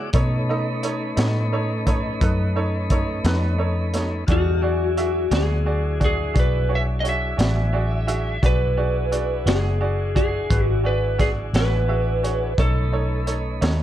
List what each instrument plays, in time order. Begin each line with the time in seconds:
Already playing: fingered electric bass C#3, tonewheel organ G#3 F#4 D5
0.13 fingered electric bass B2, tonewheel organ A3 C#4 D#4 B4, upright piano D#4 A4 C#5, kick, closed hi-hat
0.49 upright piano D#4 A4 D#5
0.83 upright piano D#4 A4 C#5, closed hi-hat
1.17 fingered electric bass A2, upright piano D#4 A4 C#5, snare, closed hi-hat
1.52 upright piano D#4 A4 C#5
1.87 upright piano D#4 A4 C#5, kick, closed hi-hat
2.21 fingered electric bass F#2, upright piano D#4 A4 B4, kick, closed hi-hat
2.56 upright piano D#4 A4 C#5
2.90 upright piano D#4 A4 C#5, kick, closed hi-hat
3.24 fingered electric bass F2, upright piano D#4 A4 B4, snare, closed hi-hat
3.58 upright piano D#4 A4 C#5
3.94 upright piano D#4 A4 C#5, snare, closed hi-hat
4.27 fingered electric bass E2, tonewheel organ G3 D#4 A4 F5, upright piano F#4 G#4 D5, kick, closed hi-hat
4.32 electric slide guitar F#4
4.61 tonewheel organ F#3 D4 E4 G#4, upright piano F#4 G#4 D5
4.97 upright piano F#4 G#4 E5, closed hi-hat
5.31 fingered electric bass D2, upright piano F#4 G#4 D5, electric slide guitar G#4, snare, closed hi-hat
5.66 upright piano F#4 G#4 D5
6.00 upright piano F#4 G#4 D5, kick, closed hi-hat
6.05 electric slide guitar G#4
6.34 fingered electric bass B1, upright piano F#4 G#4 D5, kick, closed hi-hat
6.39 electric slide guitar B4
6.69 upright piano F#4 G#4 C#5
6.75 electric slide guitar E5
7.00 upright piano F#4 G#4 C#5, electric slide guitar D#5
7.05 electric slide guitar E5, closed hi-hat
7.37 fingered electric bass A1, upright piano F#4 G#4 D5, snare, closed hi-hat
7.73 upright piano F#4 G#4 D5
8.07 upright piano F#4 G#4 E5, closed hi-hat
8.42 fingered electric bass B1, tonewheel organ D4 E4 F#4 G#4, upright piano F#4 G#4 D5, electric slide guitar B4, kick, closed hi-hat
8.77 upright piano F#4 G#4 D5
9.12 upright piano F#4 G#4 D5, closed hi-hat
9.46 fingered electric bass F#1, upright piano F#4 G#4 D5, electric slide guitar G#4, snare, closed hi-hat
9.81 upright piano F#4 G#4 D5
10.15 upright piano F#4 G#4 D5, electric slide guitar G#4, kick, closed hi-hat
10.50 fingered electric bass G#1, upright piano F#4 G#4 B4, kick, closed hi-hat
10.65 electric slide guitar F#4
10.84 upright piano F#4 G#4 D5, electric slide guitar B4
11.18 upright piano F#4 G#4 D5, electric slide guitar G#4, kick, snare, closed hi-hat
11.53 fingered electric bass A1, upright piano F#4 G#4 C#5, electric slide guitar B4, snare, closed hi-hat
11.88 upright piano F#4 G#4 E5
12.23 upright piano F#4 G#4 C#5, closed hi-hat
12.58 fingered electric bass B1, tonewheel organ A3 C#4 D#4 B4, upright piano D#4 A4 C#5, electric slide guitar A4, kick, closed hi-hat
12.92 upright piano D#4 A4 C#5
13.27 upright piano D#4 A4 C#5, closed hi-hat
13.61 fingered electric bass D#2, upright piano D#4 A4 C#5, snare, closed hi-hat